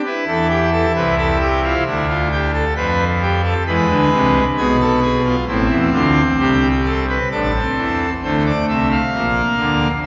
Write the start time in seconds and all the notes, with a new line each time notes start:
0.05 E4 B4
0.27 E2 E3 A4
0.50 G4
0.73 A4
0.95 C2 C3 B4
1.18 A4
1.41 G4
1.64 F4
1.86 D2 D3 E4
2.09 F4
2.32 G4
2.54 A4
2.76 F2 F3 B4
3.22 G4
3.44 A4
3.67 E2 E3 G#3 B4
3.90 D2 D3
4.12 C2 C3
4.58 B1 B2 B3 G#4
4.80 A4
5.03 G#4
5.25 F4
5.48 A1 A2 C4 E4
5.70 E2 E3
5.93 D2 D3 F4
6.39 C2 C3 G4
6.85 A4
7.09 B4
7.31 A1 A2 D4 A4
7.55 C4
7.78 E2 E3
8.23 D2 D3 A3 C5
8.46 D5
8.68 C2 C3 E5
8.91 F5
9.14 A#1 A#2 A#3
9.58 D2 D3